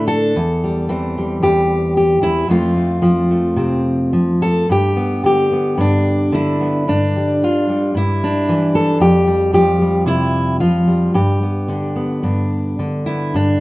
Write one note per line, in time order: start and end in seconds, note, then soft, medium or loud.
0.00 0.36 A2 medium
0.00 0.36 D3 medium
0.00 0.33 A3 medium
0.00 0.35 D4 medium
0.08 1.41 A4 loud
0.36 1.41 E2 medium
0.64 1.16 G3 soft
0.89 2.46 E3 medium
0.89 2.46 C4 soft
1.18 2.50 G3 soft
1.43 2.21 E2 medium
1.43 1.96 G4 medium
1.97 2.22 G4 medium
2.22 2.48 E2 medium
2.22 2.49 E4 medium
2.49 4.66 F2 medium
2.49 3.01 F3 soft
2.49 2.75 A3 soft
2.49 3.02 C4 soft
2.49 4.42 F4 medium
2.76 3.29 A3 soft
3.02 4.12 F3 medium
3.02 3.56 C4 soft
3.30 4.66 A3 soft
3.56 4.13 C3 medium
3.56 4.65 C4 soft
4.13 4.65 F3 medium
4.42 4.69 A4 loud
4.69 5.77 G2 medium
4.69 5.25 G4 medium
4.96 5.51 B3 soft
5.24 6.31 D3 medium
5.24 6.34 G4 medium
5.52 6.60 B3 soft
5.78 6.83 G2 medium
5.78 6.87 D4 medium
6.32 7.41 D3 medium
6.32 6.88 E4 medium
6.61 6.84 B3 soft
6.88 7.93 G2 medium
6.88 7.96 D4 medium
7.16 7.69 G3 soft
7.44 7.96 F4 medium
7.69 9.27 G3 soft
7.94 8.97 G2 medium
7.94 8.75 E4 medium
8.24 9.02 D4 medium
8.49 8.98 E3 medium
8.75 9.01 A4 loud
9.00 11.11 F2 medium
9.00 9.53 G4 medium
9.27 9.81 G3 soft
9.53 10.60 F3 medium
9.53 10.07 G4 medium
9.81 10.87 G3 soft
10.06 10.60 C3 medium
10.06 10.60 E4 medium
10.60 11.11 F3 medium
10.60 11.14 F4 medium
10.87 11.41 G3 soft
11.14 12.22 G2 medium
11.14 13.06 G4 medium
11.43 11.95 B3 soft
11.68 12.78 D3 medium
11.68 12.22 D4 soft
11.96 13.06 B3 soft
12.23 13.32 G2 medium
12.23 13.32 D4 soft
12.79 13.60 D3 medium
13.06 13.32 B3 soft
13.06 13.34 E4 medium
13.34 13.60 G2 medium
13.34 13.60 D4 medium